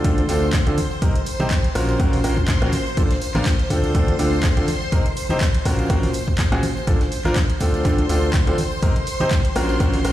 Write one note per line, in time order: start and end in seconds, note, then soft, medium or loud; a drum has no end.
0.00 6.86 C5 medium
0.00 6.86 C6 medium
0.04 0.27 D2 medium
0.04 0.21 D3 medium
0.04 0.21 C4 medium
0.04 0.21 D4 medium
0.04 0.21 F4 medium
0.04 0.21 A4 loud
0.04 kick loud
0.04 closed hi-hat medium
0.04 tambourine soft
0.18 closed hi-hat medium
0.18 high conga medium
0.28 0.64 D2 loud
0.28 0.45 D3 medium
0.28 0.45 C4 medium
0.28 0.45 D4 medium
0.28 0.45 F4 medium
0.28 0.45 A4 medium
0.28 snare soft
0.28 closed hi-hat medium
0.28 open hi-hat loud
0.28 tambourine loud
0.43 tambourine soft
0.53 kick loud
0.53 snare loud
0.53 clap loud
0.53 closed hi-hat medium
0.66 0.73 D2 loud
0.66 0.75 D3 medium
0.66 0.75 C4 medium
0.66 0.76 D4 medium
0.66 0.75 F4 medium
0.66 0.76 A4 medium
0.66 closed hi-hat soft
0.66 closed hi-hat medium
0.77 closed hi-hat medium
0.77 open hi-hat loud
0.77 tambourine medium
0.77 high conga medium
0.91 tambourine medium
1.02 1.10 C2 medium
1.02 1.13 C3 medium
1.02 1.13 C4 medium
1.02 1.13 D#4 medium
1.02 1.13 G4 medium
1.02 1.13 A#4 medium
1.02 kick loud
1.02 closed hi-hat medium
1.02 tambourine soft
1.15 closed hi-hat medium
1.15 closed hi-hat soft
1.26 closed hi-hat medium
1.26 open hi-hat loud
1.26 tambourine medium
1.40 1.46 C2 medium
1.40 1.49 C3 medium
1.40 1.49 C4 medium
1.40 1.49 D#4 medium
1.40 1.49 G4 medium
1.40 1.49 C5 medium
1.40 closed hi-hat soft
1.40 tambourine medium
1.40 high conga medium
1.50 kick loud
1.50 snare loud
1.50 clap loud
1.50 closed hi-hat medium
1.50 tambourine soft
1.64 closed hi-hat medium
1.75 1.97 A#1 medium
1.75 1.97 A#2 medium
1.75 1.97 C#4 medium
1.75 1.97 F4 medium
1.75 1.97 F#4 medium
1.75 1.97 A#4 medium
1.75 open hi-hat loud
1.75 tambourine medium
1.89 closed hi-hat soft
1.89 tambourine medium
1.99 2.22 A#1 medium
1.99 2.16 A#2 medium
1.99 2.16 C#4 medium
1.99 2.16 F4 medium
1.99 2.16 F#4 medium
1.99 2.16 A#4 loud
1.99 kick loud
1.99 closed hi-hat medium
1.99 tambourine soft
2.13 open hi-hat medium
2.13 high conga medium
2.24 2.59 A#1 loud
2.24 2.41 A#2 medium
2.24 2.41 C#4 medium
2.24 2.41 F4 medium
2.24 2.41 F#4 medium
2.24 2.41 A#4 medium
2.24 closed hi-hat medium
2.24 open hi-hat loud
2.24 tambourine medium
2.37 kick medium
2.37 tambourine medium
2.47 kick loud
2.47 snare loud
2.47 clap loud
2.47 closed hi-hat medium
2.47 tambourine soft
2.62 2.68 A#1 loud
2.62 2.71 A#2 medium
2.62 2.71 C#4 medium
2.62 2.71 F4 medium
2.62 2.71 F#4 medium
2.62 2.71 A#4 medium
2.62 snare soft
2.62 closed hi-hat medium
2.72 closed hi-hat medium
2.72 open hi-hat loud
2.72 tambourine medium
2.72 high conga medium
2.86 closed hi-hat soft
2.86 tambourine medium
2.97 3.05 A#1 loud
2.97 3.08 A#2 medium
2.97 3.08 A#3 medium
2.97 3.08 D4 medium
2.97 3.08 F4 medium
2.97 3.08 A4 medium
2.97 kick loud
2.97 closed hi-hat medium
2.97 tambourine soft
3.10 snare medium
3.10 closed hi-hat medium
3.22 closed hi-hat medium
3.22 open hi-hat loud
3.22 tambourine medium
3.35 3.42 A#1 medium
3.35 3.44 A#2 medium
3.35 3.44 A#3 medium
3.35 3.44 D4 medium
3.35 3.44 F4 medium
3.35 3.44 A#4 medium
3.35 clap soft
3.35 closed hi-hat soft
3.35 tambourine medium
3.35 high conga loud
3.46 kick loud
3.46 snare loud
3.46 clap loud
3.46 closed hi-hat medium
3.46 tambourine soft
3.59 closed hi-hat medium
3.70 3.93 D2 medium
3.70 3.92 D3 medium
3.70 3.92 C4 medium
3.70 3.92 D4 medium
3.70 3.92 F4 medium
3.70 3.92 A4 medium
3.70 kick medium
3.70 closed hi-hat medium
3.70 open hi-hat loud
3.70 tambourine loud
3.83 closed hi-hat soft
3.83 tambourine medium
3.95 4.17 D2 medium
3.95 4.11 D3 medium
3.95 4.11 C4 medium
3.95 4.11 D4 medium
3.95 4.11 F4 medium
3.95 4.11 A4 loud
3.95 kick loud
3.95 closed hi-hat medium
3.95 tambourine soft
4.08 closed hi-hat soft
4.08 high conga medium
4.19 4.54 D2 loud
4.19 4.36 D3 medium
4.19 4.36 C4 medium
4.19 4.36 D4 medium
4.19 4.36 F4 medium
4.19 4.36 A4 medium
4.19 snare soft
4.19 closed hi-hat medium
4.19 open hi-hat loud
4.19 tambourine loud
4.33 tambourine medium
4.43 kick loud
4.43 snare loud
4.43 clap loud
4.43 closed hi-hat medium
4.43 tambourine soft
4.57 4.64 D2 loud
4.57 4.66 D3 medium
4.57 4.66 C4 medium
4.57 4.66 D4 medium
4.57 4.66 F4 medium
4.57 4.66 A4 medium
4.57 closed hi-hat medium
4.57 closed hi-hat soft
4.68 closed hi-hat medium
4.68 open hi-hat loud
4.68 tambourine medium
4.68 high conga loud
4.82 tambourine medium
4.92 5.00 C2 medium
4.92 5.03 C3 medium
4.92 5.03 C4 medium
4.92 5.03 D#4 medium
4.92 5.03 G4 medium
4.92 5.03 A#4 medium
4.92 kick loud
4.92 closed hi-hat medium
4.92 tambourine soft
5.05 closed hi-hat soft
5.05 closed hi-hat medium
5.17 closed hi-hat medium
5.17 open hi-hat loud
5.17 tambourine medium
5.29 5.37 C2 medium
5.29 5.39 C3 medium
5.29 5.39 C4 medium
5.29 5.39 D#4 medium
5.29 5.39 G4 medium
5.29 5.39 C5 medium
5.29 closed hi-hat soft
5.29 tambourine soft
5.29 high conga medium
5.41 kick loud
5.41 snare loud
5.41 clap loud
5.41 closed hi-hat medium
5.41 tambourine soft
5.55 closed hi-hat medium
5.65 5.88 A#1 medium
5.65 5.87 A#2 medium
5.65 5.87 C#4 medium
5.65 5.87 F4 medium
5.65 5.87 F#4 medium
5.65 5.87 A#4 medium
5.65 kick medium
5.65 closed hi-hat medium
5.65 open hi-hat loud
5.65 tambourine medium
5.79 closed hi-hat soft
5.79 tambourine medium
5.90 6.04 A#1 medium
5.90 6.06 A#2 medium
5.90 6.06 C#4 medium
5.90 6.06 F4 medium
5.90 6.06 F#4 medium
5.90 6.06 A#4 loud
5.90 kick loud
5.90 closed hi-hat medium
5.90 tambourine soft
6.02 open hi-hat medium
6.02 high conga medium
6.13 closed hi-hat medium
6.13 open hi-hat loud
6.13 tambourine loud
6.27 kick medium
6.27 tambourine soft
6.38 kick loud
6.38 snare loud
6.38 clap loud
6.38 closed hi-hat medium
6.38 tambourine soft
6.52 6.59 A#1 loud
6.52 6.61 A#2 medium
6.52 6.61 C#4 medium
6.52 6.61 F4 medium
6.52 6.61 F#4 medium
6.52 6.61 G#4 loud
6.52 snare soft
6.52 closed hi-hat soft
6.63 closed hi-hat medium
6.63 open hi-hat loud
6.63 tambourine medium
6.63 high conga loud
6.77 closed hi-hat soft
6.77 tambourine medium
6.87 6.96 A#1 loud
6.87 6.98 A#2 medium
6.87 6.98 A#3 medium
6.87 6.98 D4 medium
6.87 6.98 F4 medium
6.87 6.98 A4 medium
6.87 10.12 C5 medium
6.87 10.12 C6 medium
6.87 kick loud
6.87 closed hi-hat medium
6.87 tambourine soft
7.01 snare medium
7.01 closed hi-hat soft
7.12 closed hi-hat medium
7.12 open hi-hat loud
7.12 tambourine medium
7.25 7.32 A#1 medium
7.25 7.34 A#2 medium
7.25 7.34 A#3 medium
7.25 7.34 D4 medium
7.25 7.34 F4 medium
7.25 7.34 A#4 medium
7.25 clap soft
7.25 closed hi-hat soft
7.25 tambourine medium
7.25 high conga medium
7.36 kick loud
7.36 snare loud
7.36 clap loud
7.36 closed hi-hat medium
7.36 tambourine soft
7.50 closed hi-hat medium
7.60 7.83 D2 medium
7.60 7.82 D3 medium
7.60 7.82 C4 medium
7.60 7.82 D4 medium
7.60 7.82 F4 medium
7.60 7.82 A4 medium
7.60 kick medium
7.60 closed hi-hat medium
7.60 open hi-hat loud
7.60 tambourine loud
7.74 closed hi-hat soft
7.74 tambourine medium
7.85 8.07 D2 loud
7.85 8.02 D3 medium
7.85 8.02 C4 medium
7.85 8.02 D4 medium
7.85 8.02 F4 medium
7.85 8.02 A4 loud
7.85 kick loud
7.85 closed hi-hat medium
7.85 tambourine soft
7.98 closed hi-hat medium
7.98 high conga medium
8.09 8.44 D2 loud
8.09 8.26 D3 medium
8.09 8.26 C4 medium
8.09 8.26 D4 medium
8.09 8.26 F4 medium
8.09 8.26 A4 medium
8.09 snare soft
8.09 closed hi-hat medium
8.09 open hi-hat loud
8.09 tambourine medium
8.22 tambourine medium
8.33 kick loud
8.33 snare loud
8.33 clap loud
8.33 closed hi-hat medium
8.33 tambourine soft
8.47 8.54 D2 loud
8.47 8.56 D3 medium
8.47 8.56 C4 medium
8.47 8.56 D4 medium
8.47 8.56 F4 medium
8.47 8.56 A4 medium
8.47 closed hi-hat soft
8.58 closed hi-hat medium
8.58 open hi-hat loud
8.58 tambourine medium
8.58 high conga medium
8.72 tambourine medium
8.82 8.91 C2 loud
8.82 8.93 C3 medium
8.82 8.93 C4 medium
8.82 8.93 D#4 medium
8.82 8.93 G4 medium
8.82 8.93 A#4 medium
8.82 kick loud
8.82 closed hi-hat medium
8.96 closed hi-hat soft
8.96 closed hi-hat medium
9.06 closed hi-hat medium
9.06 open hi-hat loud
9.06 tambourine medium
9.20 9.27 C2 medium
9.20 9.29 C3 medium
9.20 9.29 C4 medium
9.20 9.29 D#4 medium
9.20 9.29 G4 medium
9.20 9.29 C5 medium
9.20 closed hi-hat soft
9.20 tambourine medium
9.20 high conga medium
9.31 kick loud
9.31 snare loud
9.31 clap loud
9.31 closed hi-hat medium
9.31 tambourine soft
9.45 closed hi-hat medium
9.55 9.78 A#1 loud
9.55 9.77 A#2 medium
9.55 9.77 C#4 medium
9.55 9.77 F4 medium
9.55 9.77 F#4 medium
9.55 9.77 A#4 medium
9.55 open hi-hat loud
9.55 tambourine medium
9.69 closed hi-hat soft
9.69 tambourine soft
9.80 10.02 A#1 loud
9.80 9.97 A#2 medium
9.80 9.97 C#4 medium
9.80 9.97 F4 medium
9.80 9.97 F#4 medium
9.80 9.97 A#4 loud
9.80 kick loud
9.80 closed hi-hat medium
9.80 tambourine soft
9.94 open hi-hat medium
9.94 high conga medium
10.04 10.12 A#1 loud
10.04 10.12 A#2 medium
10.04 10.12 C#4 medium
10.04 10.12 F4 medium
10.04 10.12 F#4 medium
10.04 10.12 A#4 medium
10.04 closed hi-hat medium
10.04 open hi-hat loud
10.04 tambourine medium